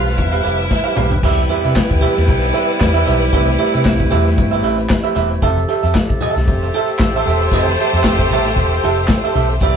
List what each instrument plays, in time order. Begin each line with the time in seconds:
Already playing: fingered electric bass B1, woodwind section F3 G3 B4, violin section F4 F5
0.05 muted clean electric guitar stroke, snare, closed hi-hat, shaker
0.17 fingered electric bass E1, violin section E4 E5, muted clean electric guitar stroke, kick, closed hi-hat, muted conga, high conga, low conga, shaker
0.32 clean electric guitar G4 B4 F5, closed hi-hat, shaker
0.43 fingered electric bass F1, clean electric guitar G4 B4 F5, closed hi-hat, shaker
0.58 muted clean electric guitar stroke, closed hi-hat, shaker
0.70 muted clean electric guitar stroke, kick, snare, muted conga, shaker
0.84 clean electric guitar G4 B4 F5, shaker
0.95 fingered electric bass B1, clean electric guitar G4 B4 F5, mid tom, muted conga, high conga, low conga, shaker
1.11 muted clean electric guitar stroke, floor tom, shaker
1.23 fingered electric bass C2, woodwind section C3 B3 E4, violin section G3 E4 B4, clean electric guitar G4 B4 E5, kick, crash, shaker
1.38 closed hi-hat, high conga, shaker
1.49 clean electric guitar G4 B4 E5, closed hi-hat, muted conga, shaker
1.64 fingered electric bass C3, clean electric guitar G4 B4 E5, closed hi-hat, shaker
1.75 muted clean electric guitar stroke, kick, snare, clap, muted conga, shaker
1.90 fingered electric bass D2, muted clean electric guitar stroke, kick, closed hi-hat, shaker
2.01 clean electric guitar G4 B4 E5, closed hi-hat, muted conga, high conga, low conga
2.16 fingered electric bass E2, muted clean electric guitar stroke, snare, closed hi-hat, shaker
2.28 fingered electric bass B1, muted clean electric guitar stroke, kick, closed hi-hat, muted conga, high conga, low conga, shaker
2.43 muted clean electric guitar stroke, closed hi-hat, shaker
2.53 clean electric guitar G4 B4 E5, closed hi-hat, muted conga, shaker
2.68 muted clean electric guitar stroke, closed hi-hat, shaker
2.80 fingered electric bass E2, muted clean electric guitar stroke, kick, snare, clap, muted conga, shaker
2.94 clean electric guitar G4 B4 E5, closed hi-hat, shaker
3.06 fingered electric bass B1, clean electric guitar G4 B4 E5, closed hi-hat, high conga, low conga, shaker
3.21 muted clean electric guitar stroke, closed hi-hat, shaker
3.32 fingered electric bass C2, woodwind section A3, clean electric guitar G4 B4 E5, kick, closed hi-hat, shaker
3.48 muted clean electric guitar stroke, closed hi-hat, high conga, shaker
3.59 clean electric guitar G4 B4 E5, closed hi-hat, muted conga, shaker
3.73 fingered electric bass C3, clean electric guitar G4 B4 E5, closed hi-hat, shaker
3.84 fingered electric bass C2, muted clean electric guitar stroke, kick, snare, clap, muted conga, shaker
3.99 muted clean electric guitar stroke, kick, closed hi-hat, shaker
4.11 fingered electric bass E2, clean electric guitar G4 B4 E5, closed hi-hat, high conga, low conga
4.26 muted clean electric guitar stroke, snare, closed hi-hat, shaker
4.37 fingered electric bass G1, muted clean electric guitar stroke, kick, closed hi-hat, muted conga, high conga, low conga, shaker
4.51 clean electric guitar G4 B4 E5, closed hi-hat, shaker
4.63 fingered electric bass A1, clean electric guitar G4 B4 E5, closed hi-hat, shaker
4.78 muted clean electric guitar stroke, closed hi-hat, shaker
4.89 muted clean electric guitar stroke, kick, snare, clap, shaker
5.04 clean electric guitar G4 B4 E5, closed hi-hat, shaker
5.15 fingered electric bass E1, clean electric guitar G4 B4 E5, closed hi-hat, high conga, low conga, shaker
5.31 muted clean electric guitar stroke, closed hi-hat, shaker
5.42 fingered electric bass F1, woodwind section F3 E4 G4 A4, clean electric guitar G4 A4 E5, kick, closed hi-hat, muted conga, shaker
5.57 closed hi-hat, high conga, shaker
5.68 clean electric guitar G4 A4 E5, closed hi-hat, shaker
5.83 fingered electric bass F2, clean electric guitar G4 A4 E5, closed hi-hat, shaker
5.95 muted clean electric guitar stroke, kick, snare, clap, shaker
6.10 fingered electric bass A1, muted clean electric guitar stroke, kick, closed hi-hat, shaker
6.21 clean electric guitar G4 A4 E5, closed hi-hat, high conga, low conga
6.36 fingered electric bass C2, muted clean electric guitar stroke, snare, closed hi-hat, shaker
6.46 fingered electric bass F1, violin section A3 G4 C5, muted clean electric guitar stroke, kick, closed hi-hat, muted conga, high conga, low conga, shaker
6.62 muted clean electric guitar stroke, closed hi-hat, shaker
6.73 clean electric guitar G4 A4 E5, closed hi-hat, muted conga, shaker
6.87 muted clean electric guitar stroke, closed hi-hat, shaker
6.99 fingered electric bass A1, muted clean electric guitar stroke, kick, snare, clap, muted conga, shaker
7.14 clean electric guitar G4 A4 E5, closed hi-hat, shaker
7.25 fingered electric bass E1, clean electric guitar G4 A4 E5, closed hi-hat, muted conga, high conga, low conga, shaker
7.40 muted clean electric guitar stroke, closed hi-hat, shaker
7.51 fingered electric bass F1, clean electric guitar G4 A4 E5, kick, closed hi-hat, shaker
7.66 muted clean electric guitar stroke, closed hi-hat, high conga, shaker
7.78 clean electric guitar G4 A4 E5, closed hi-hat
7.92 fingered electric bass F2, clean electric guitar A4 E5, closed hi-hat, shaker
7.96 clean electric guitar G4
8.04 fingered electric bass F1, muted clean electric guitar stroke, kick, snare, clap, shaker
8.19 muted clean electric guitar stroke, kick, closed hi-hat, shaker
8.30 fingered electric bass A1, clean electric guitar G4 A4 E5, open hi-hat, high conga, low conga, shaker
8.45 muted clean electric guitar stroke, snare, closed hi-hat, shaker
8.56 fingered electric bass E1, muted clean electric guitar stroke, kick, closed hi-hat, muted conga, high conga, low conga, shaker
8.71 muted clean electric guitar stroke, closed hi-hat, shaker
8.82 fingered electric bass F1, clean electric guitar G4 A4 E5, closed hi-hat, muted conga, shaker
8.96 muted clean electric guitar stroke, closed hi-hat, shaker
9.08 muted clean electric guitar stroke, kick, snare, clap, muted conga, shaker
9.23 clean electric guitar G4 A4 E5, closed hi-hat, shaker
9.35 fingered electric bass B1, clean electric guitar G4 A4 E5, open hi-hat, high conga, low conga, shaker
9.50 muted clean electric guitar stroke, closed hi-hat, shaker
9.60 fingered electric bass C2, woodwind section C3 B3, violin section B3 G4 D5, clean electric guitar G4 B4 E5, kick, closed hi-hat, muted conga, shaker